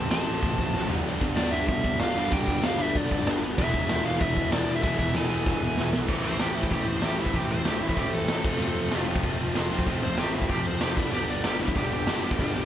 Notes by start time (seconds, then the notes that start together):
Already playing: F2 A2 C3 F3 A3 C4 F4 A4 A5
0.10 A1 A3 C4 F4 A4 A5, snare, crash
0.25 A1 F2 C3 F3
0.43 A1, kick, crash
0.58 kick
0.74 A1, snare
0.88 G1 G2 D3 G3 B3 D4 G4, floor tom
1.05 G1, crash
1.21 G1, kick
1.36 G1 G3 B3 D4 G4 D5, snare, crash
1.51 G1 G2 D3 G3 E5
1.67 G1 E5, kick, crash
1.84 kick
2.00 G1 F5, snare, crash
2.15 G1 G2 D3 G3 B3 D4 G4
2.32 G1 G5, kick, crash
2.48 G1, kick
2.63 G1 G3 B3 D4 G4 F5, snare, crash
2.78 G1 G2 D3 G3 E5
2.95 G1 D5, kick, crash
3.11 kick
3.26 G1, snare, crash
3.42 G1
3.58 E1 E2 B2 E3 G#3 B3 E4 G#4 E5, kick, crash
3.73 E1, kick
3.89 E1, snare, crash
4.04 E1 E3 B3 E4 G#4 F5
4.20 E1 E2 B2 E3 E5, kick, crash
4.37 kick
4.51 E1 D5, snare, crash
4.67 E1
4.76 E5
4.82 E1 E2 B2 E3 G#3 B3 E4 G#4 E5, kick, crash
4.98 E1 E5, kick
5.14 E1 G#5, snare, crash
5.30 E1 E3 B3 E4 G#4 G#5
5.45 E1 E2 B2 E3, kick, snare
5.78 E1, snare
5.93 B1, snare
6.08 A1 A2 E3 A3 C4 E4, kick, crash
6.25 C5
6.39 A1 A2 E3 A3 C4 E4 G4, snare, crash
6.55 A1 A2 E3 A3 C4 E4
6.63 kick
6.70 A1 A2 E3 A3 C4 E4 G4, kick, crash
6.86 A1 C5
7.02 A1 A2 E3 A3 C4 E4 G4, snare, crash
7.18 A1 A2 E3 A3 C4 E4
7.26 kick
7.33 A1 A2 E3 A3 C4 E4 G4, kick, crash
7.51 A1 C5
7.65 D2 A2 E3 A3 C4 E4 G4, snare, crash
7.81 A1 A2 E3 A3 C4 E4
7.89 kick
7.96 A1 A2 E3 A3 C4 E4 G4, kick, crash
8.12 A1 A4
8.28 A1 A2 E3 A3 C4 E4, snare, crash
8.43 F1 F2 C3 F3 A3 C4 F4, kick, crash
8.59 F1 F2 C3 F3 A3 C4 F4, crash
8.91 F1 F2 C3 F3 A3 C4 F4, snare, crash
9.07 F1 F2 C3 F3 A3 C4 F4
9.16 kick
9.23 F1 F2 C3 F3 A3 C4 F4, kick, crash
9.39 F1
9.54 F1 F2 C3 F3 A3 C4 F4, snare, crash
9.70 F1 F2 C3 F3 A3 C4 F4
9.79 kick
9.86 F1 F2 C3 F3 A3 C4 F4, kick, crash
10.02 F1 C5
10.17 A1 F2 C3 F3 A3 C4 F4 G4, snare, crash
10.34 F1 F2 C3 F3 A3 C4 E4 F4
10.42 kick
10.49 F1 F2 C3 F3 A3 C4 F4 G4, kick, crash
10.66 F1 C5
10.81 F1 F2 C3 F3 A3 C4 F4 G4, snare, crash
10.97 G1 G2 D3 G3 B3 D4 E4, kick, crash
11.12 G1 G2 D3 G3 B3 D4 G4, crash
11.30 D5
11.44 G1 G2 D3 G3 B3 D4 G4, snare, crash
11.60 G1 G2 D3 G3 B3 D4 E4
11.68 kick
11.75 G1 G2 D3 G3 B3 D4 G4, kick, crash
11.92 G1 G4
12.07 G1 G2 D3 G3 B3 D4, snare, crash
12.23 G1 G2 D3 G3 B3 D4
12.31 kick
12.39 G1 G2 D3 G3 B3 D4, kick, crash
12.55 G1